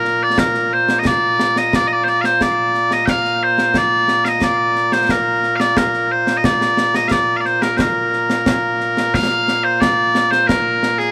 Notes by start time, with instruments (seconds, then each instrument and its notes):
Already playing: bagpipes A#2 A#3 A#4
0.05 snare
0.23 bagpipes D5
0.38 bagpipes A#4, concert bass drum, snare
0.54 snare
0.73 bagpipes C5
0.88 snare
0.99 bagpipes D#5
1.05 bagpipes D5, concert bass drum, snare
1.40 snare
1.56 bagpipes D#5, snare
1.73 bagpipes D5, concert bass drum, snare
1.87 bagpipes D#5
1.93 bagpipes D5
2.04 bagpipes C5, snare
2.08 bagpipes D5
2.21 bagpipes C5 F5, snare
2.41 bagpipes D5, concert bass drum, snare
2.74 snare
2.91 bagpipes D#5, snare
3.06 bagpipes F5 G5, concert bass drum, snare
3.25 snare
3.43 bagpipes C5
3.58 snare
3.74 bagpipes D5, concert bass drum, snare
4.08 snare
4.25 bagpipes D#5 F5, snare
4.41 bagpipes D5, concert bass drum, snare
4.75 snare
4.92 bagpipes C5, snare
5.09 bagpipes A#4, concert bass drum, snare
5.43 snare
5.56 bagpipes D5 F5, snare
5.77 bagpipes A#4, concert bass drum, snare
5.94 snare
6.11 bagpipes C5
6.27 snare
6.37 bagpipes D#5
6.44 bagpipes D5, concert bass drum, snare
6.61 snare
6.77 snare
6.94 bagpipes D#5, snare
7.08 bagpipes D5 F5, concert bass drum, snare
7.36 bagpipes D5 F5
7.45 bagpipes C5, snare
7.62 bagpipes A#4, snare
7.77 bagpipes A#4 C5, concert bass drum, snare
8.13 snare
8.30 snare
8.46 concert bass drum, snare
8.80 snare
8.97 snare
9.14 bagpipes F5, concert bass drum, snare
9.48 snare
9.64 bagpipes C5
9.81 bagpipes D5, concert bass drum, snare
10.15 snare
10.31 bagpipes C5, snare
10.47 bagpipes A#4, concert bass drum, snare
10.83 snare
10.98 bagpipes G#4, snare